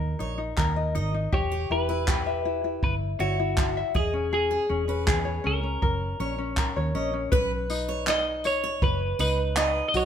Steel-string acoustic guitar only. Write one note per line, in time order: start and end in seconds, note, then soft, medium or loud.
0.20 0.38 C#5 medium
0.95 1.13 D#5 medium
1.52 1.69 G4 medium
1.89 2.42 B4 medium
3.20 3.38 C#5 medium
3.95 4.13 D#5 medium
4.51 4.69 G#4 medium
4.89 5.42 B4 medium
6.20 6.38 C#5 medium
6.95 7.13 D#5 medium
7.33 7.50 B4 loud
7.89 8.06 C#5 medium
8.07 8.25 D#5 medium
8.64 8.99 C#5 medium
9.19 9.37 B4 medium
9.57 10.05 D#5 medium